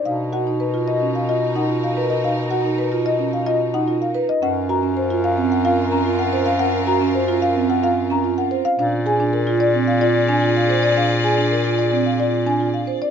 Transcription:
0.05 bass clarinet B2, string section D#4 A#4, marimba D#4 F5
0.33 marimba F#4 F#5
0.47 marimba D#4
0.60 marimba B4
0.74 marimba F4
0.88 marimba D#5
1.01 marimba C#4
1.15 marimba F5
1.29 marimba F4 D#5
1.56 marimba D#4 F#5
1.70 marimba F4
1.84 marimba F5
1.97 marimba B4
2.10 marimba D#5
2.24 marimba D#4 F5
2.51 marimba F#4 F#5
2.65 marimba D#4
2.78 marimba B4
2.92 marimba F4
3.06 marimba D#5
3.19 marimba C#4
3.33 marimba F5
3.46 marimba F4 D#5
3.74 marimba D#4 F#5
3.88 marimba F4
4.02 marimba F5
4.15 marimba B4
4.29 marimba D#5
4.42 bass clarinet F#2, marimba C#4 F#5, string section F4 A#4
4.69 marimba F#4 A#5
4.83 marimba C#4
4.97 marimba C5
5.10 marimba F4
5.24 marimba F5
5.37 marimba C4
5.52 marimba F#5
5.65 marimba F4 F5
5.92 marimba C#4 A#5
6.06 marimba F4
6.19 marimba F#5
6.33 marimba C5
6.46 marimba F5
6.59 marimba C#4 F#5
6.87 marimba F#4 A#5
7.01 marimba C#4
7.15 marimba C5
7.28 marimba F4
7.42 marimba F5
7.56 marimba C4
7.70 marimba F#5
7.83 marimba F4 F5
8.10 marimba C#4 A#5
8.24 marimba F4
8.38 marimba F#5
8.51 marimba C5
8.65 marimba F5
8.79 bass clarinet A#2, marimba D4 F5, string section G#4 D5
9.06 marimba G#4 G#5
9.20 marimba D4
9.33 marimba A#4
9.47 marimba F4
9.60 marimba D5
9.74 marimba C4
9.87 marimba F5
10.01 marimba F4 D5
10.29 marimba D4 G#5
10.42 marimba F4
10.56 marimba F5
10.69 marimba C5
10.83 marimba D5
10.97 marimba D4 F5
11.24 marimba G#4 G#5
11.38 marimba D4
11.51 marimba A#4
11.65 marimba F4
11.79 marimba D5
11.92 marimba C4
12.06 marimba F5
12.19 marimba F4 D5
12.47 marimba D4 G#5
12.60 marimba F4
12.74 marimba F5
12.87 marimba C5
13.02 marimba D5

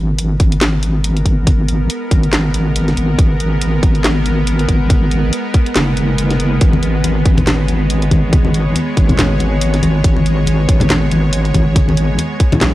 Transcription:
Already playing: wobble bass G#1, synth drone G#3 B3 A#4
0.19 closed hi-hat
0.40 wobble bass G#1, kick, closed hi-hat
0.52 closed hi-hat
0.61 snare, clap, closed hi-hat
0.83 closed hi-hat
1.04 closed hi-hat
1.17 closed hi-hat
1.26 wobble bass G#1, kick, closed hi-hat
1.47 kick, closed hi-hat
1.69 closed hi-hat
1.90 closed hi-hat
2.11 wobble bass G#1, kick, closed hi-hat
2.23 closed hi-hat
2.33 snare, clap, closed hi-hat
2.54 closed hi-hat
2.76 closed hi-hat
2.88 snare, closed hi-hat
2.97 wobble bass G#1, closed hi-hat
3.18 wobble bass G#1, kick, closed hi-hat
3.40 closed hi-hat
3.61 closed hi-hat
3.83 wobble bass G#1, kick, closed hi-hat
3.95 closed hi-hat
4.04 snare, clap, closed hi-hat
4.26 closed hi-hat
4.47 closed hi-hat
4.59 closed hi-hat
4.69 wobble bass G#1, kick, closed hi-hat
4.90 kick, closed hi-hat
5.11 closed hi-hat
5.33 closed hi-hat
5.54 kick, closed hi-hat
5.66 closed hi-hat
5.76 wobble bass F#1, snare, clap, closed hi-hat
5.97 closed hi-hat
6.18 closed hi-hat
6.31 snare, closed hi-hat
6.40 closed hi-hat
6.61 wobble bass G#1, synth drone C#5, kick, closed hi-hat
6.73 high conga
6.83 closed hi-hat
7.04 closed hi-hat, high conga
7.26 wobble bass G#1, kick, closed hi-hat
7.38 closed hi-hat, high conga, low conga
7.47 snare, clap, closed hi-hat, low conga
7.68 closed hi-hat, high conga
7.90 closed hi-hat
8.02 closed hi-hat
8.11 wobble bass G#1, kick, closed hi-hat, high conga
8.33 kick, closed hi-hat
8.45 high conga
8.54 closed hi-hat
8.76 closed hi-hat, high conga
8.97 wobble bass G#1, kick, closed hi-hat
9.09 closed hi-hat, high conga, low conga
9.19 snare, clap, closed hi-hat, low conga
9.40 closed hi-hat, high conga
9.61 closed hi-hat
9.74 snare, closed hi-hat
9.83 wobble bass G#1, closed hi-hat, high conga
10.04 wobble bass G#1, kick, closed hi-hat
10.16 high conga
10.26 closed hi-hat
10.46 closed hi-hat, high conga
10.69 wobble bass G#1, kick, closed hi-hat
10.80 closed hi-hat, high conga, low conga
10.90 snare, clap, closed hi-hat, low conga
11.11 closed hi-hat, high conga
11.33 closed hi-hat
11.45 closed hi-hat
11.54 wobble bass G#1, kick, closed hi-hat, high conga
11.76 kick, closed hi-hat
11.89 high conga
11.97 closed hi-hat
12.18 closed hi-hat, high conga
12.40 kick, closed hi-hat
12.52 closed hi-hat, high conga, low conga
12.61 wobble bass A#1, snare, clap, closed hi-hat, low conga

